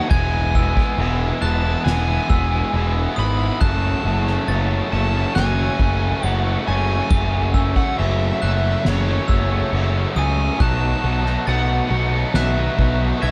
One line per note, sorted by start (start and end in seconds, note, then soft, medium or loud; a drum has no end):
0.09 0.76 E1 loud
0.09 0.53 E3 loud
0.09 0.54 G#3 medium
0.09 0.54 B3 loud
0.09 0.56 E4 loud
0.09 1.42 G#5 loud
0.09 0.54 G#6 loud
0.09 kick loud
0.09 crash loud
0.53 0.98 E3 medium
0.53 0.77 G#3 medium
0.53 0.75 B3 medium
0.53 0.74 E4 medium
0.53 1.42 E6 medium
0.53 kick medium
0.53 crash medium
0.75 0.97 G#3 medium
0.75 0.99 B3 medium
0.75 1.00 E4 medium
0.75 kick medium
0.75 snare soft
0.98 1.31 E1 loud
0.98 1.41 E3 loud
0.98 1.42 G#3 loud
0.98 1.43 B3 loud
0.98 1.44 E4 loud
0.98 crash loud
1.42 1.75 E1 loud
1.42 2.27 E3 medium
1.42 1.66 G#3 medium
1.42 1.64 B3 medium
1.42 1.63 E4 medium
1.42 1.83 A5 loud
1.42 2.29 F#6 medium
1.42 crash medium
1.63 2.09 G#3 medium
1.63 2.08 B3 medium
1.63 2.07 E4 medium
1.85 2.18 E1 loud
1.85 3.19 G#5 loud
1.85 snare loud
1.85 crash loud
2.07 2.28 G#3 medium
2.07 2.29 B3 medium
2.07 2.31 E4 medium
2.28 2.62 E1 loud
2.28 2.72 E3 medium
2.28 2.53 G#3 medium
2.28 2.51 B3 medium
2.28 2.50 E4 medium
2.28 3.17 E6 medium
2.28 kick medium
2.28 crash medium
2.51 2.73 G#3 medium
2.51 2.73 B3 medium
2.51 2.75 E4 medium
2.73 3.06 E1 loud
2.73 3.15 E3 loud
2.73 2.96 G#3 loud
2.73 2.94 B3 loud
2.73 2.94 E4 loud
2.73 crash medium
2.94 3.16 G#3 medium
2.94 3.17 B3 medium
2.94 3.19 E4 medium
3.16 3.50 G#1 loud
3.16 3.61 E3 medium
3.16 3.58 G#3 medium
3.16 3.59 B3 medium
3.16 3.63 E4 medium
3.16 3.59 B5 loud
3.16 3.60 D#6 medium
3.16 crash medium
3.39 3.59 G#3 medium
3.39 3.59 B3 medium
3.39 3.63 E4 medium
3.61 3.94 F#1 loud
3.61 4.47 F#2 loud
3.61 4.02 C#3 loud
3.61 4.04 F#3 loud
3.61 4.05 A3 loud
3.61 4.06 C#4 loud
3.61 4.88 A5 loud
3.61 4.48 F#6 loud
3.61 kick loud
3.61 crash medium
4.03 4.37 F#1 loud
4.03 4.47 C#3 medium
4.03 4.28 F#3 medium
4.03 4.27 A3 loud
4.03 4.25 C#4 medium
4.03 crash medium
4.26 4.48 F#3 medium
4.26 4.49 A3 medium
4.26 4.50 C#4 medium
4.26 snare soft
4.47 4.81 F#1 loud
4.47 6.21 F#2 loud
4.47 4.90 C#3 loud
4.47 4.92 F#3 loud
4.47 4.92 A3 loud
4.47 4.94 C#4 loud
4.47 5.36 A6 loud
4.47 crash medium
4.91 5.25 F#1 loud
4.91 5.57 C#3 medium
4.91 5.16 F#3 medium
4.91 5.15 A3 medium
4.91 5.12 C#4 medium
4.91 5.35 A5 loud
4.91 crash medium
5.13 5.60 F#3 medium
5.13 5.58 A3 medium
5.13 5.56 C#4 medium
5.35 5.69 F#1 loud
5.35 6.26 G#5 loud
5.35 6.23 F#6 loud
5.35 snare loud
5.35 crash loud
5.58 5.80 F#3 medium
5.58 5.81 A3 medium
5.58 5.81 C#4 medium
5.79 6.12 F#1 medium
5.79 6.22 C#3 medium
5.79 6.03 F#3 medium
5.79 6.02 A3 medium
5.79 5.99 C#4 medium
5.79 kick medium
5.79 crash medium
6.00 6.23 F#3 medium
6.00 6.24 A3 medium
6.00 6.24 C#4 medium
6.22 6.56 F#1 medium
6.22 6.88 F#2 loud
6.22 6.65 C#3 loud
6.22 6.46 F#3 loud
6.22 6.45 A3 loud
6.22 6.43 C#4 loud
6.22 7.09 A7 medium
6.22 crash medium
6.26 6.66 F#5 loud
6.44 6.66 F#3 medium
6.44 6.68 A3 medium
6.44 6.68 C#4 medium
6.66 7.00 F#1 medium
6.66 7.09 C#3 medium
6.66 7.10 F#3 medium
6.66 7.11 A3 medium
6.66 7.11 C#4 medium
6.66 7.76 G#5 loud
6.66 crash medium
6.89 7.12 F#3 medium
6.89 7.12 A3 medium
6.89 7.12 C#4 medium
7.10 7.76 F#1 medium
7.10 7.96 F#2 loud
7.10 7.51 C#3 loud
7.10 7.54 F#3 medium
7.10 7.54 A3 loud
7.10 7.54 C#4 loud
7.10 7.54 A7 loud
7.10 kick loud
7.10 crash loud
7.53 7.97 C#3 medium
7.53 7.77 F#3 medium
7.53 7.75 A3 medium
7.53 7.73 C#4 medium
7.53 8.42 E6 medium
7.53 kick medium
7.53 crash medium
7.74 7.98 F#3 medium
7.74 7.99 A3 medium
7.74 7.99 C#4 medium
7.74 7.98 F#5 loud
7.74 kick medium
7.74 snare soft
7.97 8.31 F#1 medium
7.97 8.85 F#2 medium
7.97 8.38 C#3 loud
7.97 8.40 F#3 loud
7.97 8.41 A3 loud
7.97 8.42 C#4 loud
7.97 8.41 E5 loud
7.97 crash loud
8.40 8.75 F#1 medium
8.40 9.06 C#3 medium
8.40 8.63 F#3 medium
8.40 8.62 A3 medium
8.40 8.60 C#4 medium
8.40 8.87 E5 medium
8.40 9.29 F#6 medium
8.40 crash medium
8.61 9.08 F#3 medium
8.61 9.07 A3 medium
8.61 9.05 C#4 medium
8.85 9.18 F#1 loud
8.85 10.22 C#5 loud
8.85 snare loud
8.85 crash loud
9.06 9.27 F#3 medium
9.06 9.28 A3 medium
9.06 9.28 C#4 medium
9.27 9.62 F#1 medium
9.27 9.70 C#3 medium
9.27 9.50 F#3 medium
9.27 9.49 A3 medium
9.27 9.47 C#4 medium
9.27 10.16 E6 medium
9.27 kick medium
9.27 crash medium
9.48 9.70 F#3 medium
9.48 9.71 A3 medium
9.48 9.72 C#4 medium
9.70 10.05 F#1 medium
9.70 10.37 F#2 medium
9.70 10.14 C#3 loud
9.70 9.95 F#3 loud
9.70 9.94 A3 loud
9.70 9.92 C#4 loud
9.70 crash loud
9.93 10.15 F#3 medium
9.93 10.16 A3 medium
9.93 10.17 C#4 medium
10.15 10.49 C#2 loud
10.15 10.57 C#3 medium
10.15 10.58 F#3 medium
10.15 10.58 A3 medium
10.15 10.58 C#4 medium
10.15 10.62 G#5 loud
10.15 10.60 D#6 medium
10.15 crash medium
10.38 10.59 F#3 medium
10.38 10.58 A3 medium
10.38 10.58 C#4 medium
10.58 10.93 B1 medium
10.58 11.00 B2 medium
10.58 11.02 F#3 loud
10.58 11.03 B3 medium
10.58 11.03 D#4 loud
10.58 11.48 F#6 medium
10.58 kick loud
10.58 crash medium
10.62 11.05 A3 loud
10.62 11.51 A5 loud
11.01 11.36 B1 loud
11.01 11.45 B2 medium
11.01 11.25 F#3 medium
11.01 11.24 B3 medium
11.01 11.22 D#4 medium
11.01 crash medium
11.06 11.26 A3 medium
11.23 11.46 F#3 medium
11.23 11.48 A3 medium
11.23 11.47 B3 medium
11.23 11.47 D#4 medium
11.23 snare soft
11.46 11.80 B1 medium
11.46 11.87 B2 loud
11.46 11.89 F#3 loud
11.46 11.92 A3 loud
11.46 11.90 B3 loud
11.46 11.90 D#4 loud
11.46 12.38 F#5 loud
11.46 12.35 A6 medium
11.46 crash medium
11.88 12.23 B1 medium
11.88 12.56 B2 medium
11.88 12.12 F#3 medium
11.88 12.11 B3 medium
11.88 12.10 D#4 medium
11.88 crash medium
11.93 12.14 A3 medium
12.11 12.56 F#3 medium
12.11 12.55 B3 medium
12.11 12.53 D#4 medium
12.15 12.57 A3 medium
12.34 12.67 B1 loud
12.34 13.21 E5 loud
12.34 13.23 F#6 medium
12.34 snare loud
12.34 crash loud
12.55 12.77 F#3 medium
12.55 12.79 A3 medium
12.55 12.77 B3 medium
12.55 12.78 D#4 medium
12.77 13.11 B1 medium
12.77 13.19 B2 medium
12.77 13.00 F#3 medium
12.77 13.22 A3 medium
12.77 12.99 B3 medium
12.77 12.97 D#4 medium
12.77 kick medium
12.77 crash medium
12.98 13.19 F#3 medium
12.98 13.21 B3 medium
12.98 13.22 D#4 medium
13.20 13.31 B1 loud
13.20 13.31 B2 loud
13.20 13.31 F#3 loud
13.20 13.31 A3 loud
13.20 13.31 B3 loud
13.20 13.31 D#4 loud
13.20 13.31 E5 loud
13.20 13.31 G#6 medium
13.20 crash medium